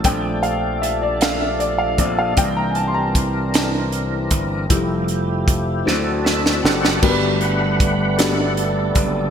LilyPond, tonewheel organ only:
<<
  \new Staff \with { instrumentName = "Tonewheel organ" } { \time 6/8 \key bes \lydian \tempo 4. = 52 << { r2. | r2. | r2 r8 <d' g'>8~ | \key g \major <d' g'>8 <d' b' fis''>4 <d' a'>4. | } \\ { <f a d' a'>2. | <e c' d' bes'>2. | <f aes a e' g'>4. <e c' d' fis' a'>4. | r2. | } >> }
  \new Staff \with { instrumentName = "Tonewheel organ" } { \time 6/8 \key bes \lydian r2. | r2. | r2 e''8 fis''8 | \key g \major <g a b>2~ <g a b>8 <d a b>8 | }
>>